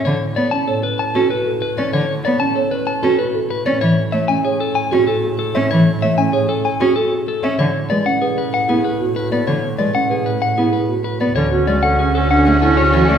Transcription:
X:1
M:6/4
L:1/8
Q:1/4=191
K:Dlyd
V:1 name="Clean electric guitar"
c z d a A B a A B z B d | c z d a A B a A B z B d | c z e g G A g G A z A e | c z e g G A g G A z A e |
c z d f G B f G B z B d | c z d f G B f G B z B d | c z d f G A f G A c A d |]
V:2 name="Marimba"
z2 c C c z2 F B A z c | z2 c C c z2 F B A z c | z2 c C c z2 F z G z c | z2 c C c z2 F A z2 c |
z2 B C B z2 E G F z B | z2 B C B z2 E G F z B | A F z A C A D z E G F z |]
V:3 name="Violin section"
z12 | z12 | z12 | z12 |
z12 | z12 | [CF]12 |]
V:4 name="Oboe"
z12 | z12 | z12 | z12 |
z12 | z12 | C C C C C C C C C C C C |]
V:5 name="Cello"
D, z B, z4 C z3 C | D, z B, z4 C z3 C | E, z A, z4 C z3 C | E, z A, z4 C z3 C |
D, z G, z4 B, z3 B, | D, z G, z4 B, z3 B, | D, z G, z4 A, z2 E, A, |]
V:6 name="Double bass" clef=bass
A,,12- | A,,12 | A,,12- | A,,12 |
A,,12- | A,,12 | D,,12 |]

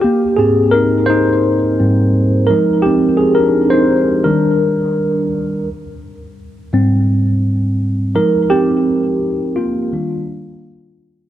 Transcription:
X:1
M:4/4
L:1/16
Q:1/4=85
K:Ablyd
V:1 name="Tine electric piano"
[B,G]2 A2 [EB]2 [Ec]8 B2 | [CG]2 [CA] [DB]2 [Ec]3 B6 z2 | z12 z2 B2 | [CG]6 [B,F]8 z2 |]
V:2 name="Tine electric piano" clef=bass
z2 [A,,CG]6 z2 [A,,G,C]2 z2 [F,A,E]2- | [F,A,E]8 [E,G,D]8 | z6 [A,,G,C]2 z6 [F,A,E]2- | [F,A,E]4 z4 [E,G,D]6 z2 |]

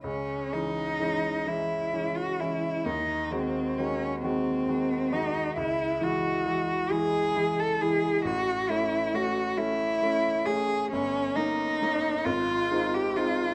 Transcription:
X:1
M:6/8
L:1/16
Q:3/8=45
K:C#m
V:1 name="Cello"
C2 D4 E3 F E2 | D2 ^B,2 C2 B,4 D2 | E2 F4 G3 A G2 | F2 E2 F2 E4 G2 |
[K:Ab] D2 E4 F3 G F2 |]
V:2 name="Grand piano" clef=bass
C,,2 [E,G,C]2 [E,G,C]2 [E,G,C]2 [E,G,C]2 [E,G,C]2 | D,,2 [D,G,F]2 [D,G,F]2 [D,G,F]2 [D,G,F]2 [D,G,F]2 | C,,2 [E,G,E]2 [E,G,E]2 [E,G,E]2 [E,G,E]2 [E,G,E]2 | A,,,2 [A,C]2 [A,C]2 [A,C]2 [A,C]2 [A,C]2 |
[K:Ab] G,,,2 [B,DE]2 [B,DE]2 A,,,2 [A,CE]2 [A,CE]2 |]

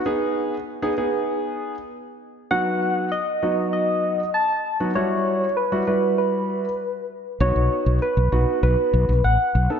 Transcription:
X:1
M:4/4
L:1/16
Q:1/4=98
K:Bmix
V:1 name="Soft synth lead"
z16 | f4 d4 d4 a3 z | c4 B2 B2 B6 z2 | c4 B4 B4 f3 z |]
V:2 name="Grand piano"
[B,DG]3 z2 [B,DG] [B,DG]4- [B,DG] z4 z | [F,B,DF]4 z2 [F,B,DF]4- [F,B,DF] z4 [F,B,DF] | [=G,EF]3 z2 [G,EF] [G,EF]4- [G,EF] z4 z | [B,DF]4 z2 [B,DF]4- [B,DF] z4 [B,DA] |]
V:3 name="Fretless electric bass" clef=bass
z16 | z16 | z16 | B,,, B,,, z B,,, z B,,, B,,, z B,,, z B,,, B,,, A,,, z B,,, z |]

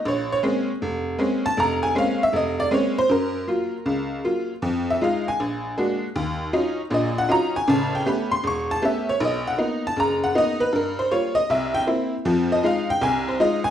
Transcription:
X:1
M:4/4
L:1/8
Q:"Swing" 1/4=157
K:Bbm
V:1 name="Honky-tonk piano"
d d z4 z =a | b a f =e _e =d _d c | B6 z2 | z =e f a3 z2 |
z4 e g b a | =a =g =b c' ^c' a =e ^c | ^d ^f z =a ^a f d =B | B c d e =e =g z2 |
z e f =g a c e a |]
V:2 name="Honky-tonk piano"
B,,,2 [A,B,CD] z F,,,2 [A,B,CD] z | F,,,2 [A,B,CD] z F,,,2 [A,B,CD] z | G,,2 [G,B,F] z D,,2 [G,B,F] z | F,,2 [A,EF] z B,,,2 [A,B,=D^F] z |
E,,2 [G,DEF] z [B,,,B,,]2 [G,DEF] z | [=A,,,^C,]2 [=A,=B,^C=G] z =E,,,2 [A,B,CG] z | =B,,,2 [^A,=B,^D] z ^F,,,2 [A,B,D] z | =G,,2 [=G,B,F] z C,,2 [B,C=E] z |
[F,,F,]2 [A,EF] z C,,2 [A,EF] z |]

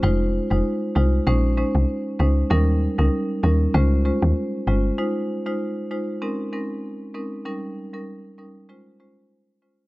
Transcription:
X:1
M:4/4
L:1/16
Q:"Swing 16ths" 1/4=97
K:Fm
V:1 name="Marimba"
[A,EFc]3 [A,EFc]3 [A,EFc]2 [A,DEc]2 [A,DEc] z3 [A,DEc]2 | [G,DEB]3 [G,DEB]3 [G,DEB]2 [A,DFc]2 [A,DFc] z3 [A,DFc]2 | [A,EFc]3 [A,EFc]3 [A,EFc]2 [A,CDEB]2 [A,CDEB] z3 [A,CDEB]2 | [G,DEB]3 [G,DEB]3 [G,DEB]2 [A,DFc]2 [A,DFc] z3 [A,DFc]2 |]
V:2 name="Log drum bass" clef=bass
F,,,3 F,,, z2 C,,2 B,,,3 C,, z2 D,,2 | E,,3 D,, z2 E,,2 D,,3 E,, z2 G,,,2 | z16 | z16 |]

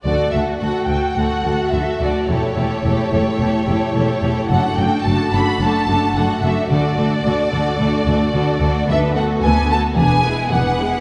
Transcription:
X:1
M:4/4
L:1/8
Q:1/4=109
K:D
V:1 name="Violin section"
d e f g f2 e d | c8 | f g a b a2 f e | d8 |
[K:Bdor] e f g a g2 f2 |]
V:2 name="Violin section"
[FA] [FA] [FA] [FA] [FA] [FA] [FA] [FA] | [GA] [GA] [GA] [GA] [GA] [GA] [GA] [GA] | [FA] [FA] [FA] [FA] [FA] [FA] [FA] [FA] | [FA] [FA] [FA] [FA] [FA] [FA] [FA] [FA] |
[K:Bdor] [AB] [FA] [AB] [FA] [GB] [EG] [GB] [EG] |]
V:3 name="Viola section"
[A,F] [A,F] [A,F] [A,F] [A,F] [A,F] [A,F] [A,F] | [A,E] [A,E] [A,E] [A,E] [A,E] [A,E] [A,E] [A,E] | [A,D] [A,D] [A,D] [A,D] [A,D] [A,D] [A,D] [A,D] | [A,D] [A,D] [A,D] [A,D] [A,D] [A,D] [A,D] [A,D] |
[K:Bdor] [B,D] [A,B,] [B,D] [A,B,] [B,D] [G,B,] [B,D] [G,B,] |]
V:4 name="Cello section" clef=bass
D,, D,, D,, D,, D,, D,, D,, D,, | E,, E,, E,, E,, E,, E,, E,, E,, | F,, F,, F,, F,, F,, F,, F,, F,, | D,, D,, D,, D,, D,, D,, D,, D,, |
[K:Bdor] D,,2 D,,2 E,,2 E,,2 |]
V:5 name="Double bass section" clef=bass
D,, D,, D,, D,, D,, D,, D,, D,, | E,,, E,,, E,,, E,,, E,,, E,,, E,,, E,,, | F,,, F,,, F,,, F,,, F,,, F,,, F,,, F,,, | D,, D,, D,, D,, D,, D,, D,, D,, |
[K:Bdor] D,,2 D,,2 E,,,2 E,,,2 |]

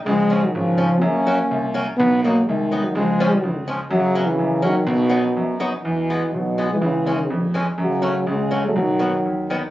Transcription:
X:1
M:2/4
L:1/16
Q:1/4=124
K:B
V:1 name="Steel-string acoustic guitar" clef=bass
z2 [^E,G,C]2 z2 [E,G,C]2 | z2 [F,A,C]2 z2 [F,A,C]2 | z2 [F,B,D]2 z2 [F,B,D]2 | z2 [^E,G,C]2 z2 [E,G,C]2 |
z2 [F,B,C]2 z2 [F,A,C]2 | z2 [F,B,D]2 z2 [F,B,D]2 | [K:E] z2 [E,G,B,]2 z2 [E,G,B,]2 | z2 [E,G,C]2 z2 [E,G,C]2 |
z2 [F,A,C]2 z2 [F,A,C]2 | z2 [D,F,B,]2 z2 [D,F,B,]2 |]
V:2 name="Euphonium" clef=bass
G,3 F, ^E,4 | C6 z2 | B,2 A,2 G,3 F, | G,6 z2 |
F,3 E,3 F,2 | B,,6 z2 | [K:E] E,4 F,3 G, | E,6 z2 |
F,4 G,3 A, | F,6 z2 |]
V:3 name="Euphonium" clef=bass
^E,3 D, C,4 | A,6 z2 | F,2 F,2 D,3 D, | ^E,6 z2 |
C,3 C,3 D,2 | F,,6 z2 | [K:E] B,,4 B,,3 E, | C,6 z2 |
C,4 C,3 F, | D,6 z2 |]
V:4 name="Grand piano" clef=bass
C,,4 G,,,4 | F,,4 =C,,4 | B,,,4 =C,,4 | C,,4 C,,4 |
F,,4 F,,4 | B,,,4 F,,4 | [K:E] E,,4 B,,,4 | C,,4 =F,,4 |
F,,4 C,,4 | B,,,4 D,,4 |]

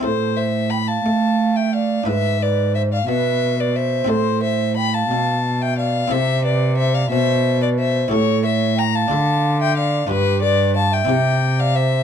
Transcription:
X:1
M:6/8
L:1/16
Q:3/8=60
K:Am
V:1 name="Violin"
c2 e2 b a4 g f2 | e2 d2 e f e3 d e2 | c2 e2 b a4 g f2 | e2 d2 e f e3 d e2 |
^c2 e2 _b a4 g f2 | B2 d2 a g4 f e2 |]
V:2 name="Flute"
A2 c2 g f4 e d2 | B2 B2 c d B3 B c2 | A2 c2 g f4 e d2 | c2 B2 c d c3 B c2 |
A2 ^c2 g f4 e d2 | G2 B2 f e4 d c2 |]
V:3 name="Harpsichord"
[CEA]12 | [DEB]12 | [CEA]12 | [CEA]12 |
[EGA]6 [DFA]6 | [DFG]6 [CEG]6 |]
V:4 name="Harpsichord" clef=bass
A,,6 A,6 | ^G,,6 B,,6 | A,,6 B,,6 | C,6 B,,6 |
A,,6 D,6 | G,,6 C,6 |]
V:5 name="Cello" clef=bass
A,,6 A,6 | ^G,,6 B,,6 | A,,6 B,,6 | C,6 B,,6 |
A,,6 D,6 | G,,6 C,6 |]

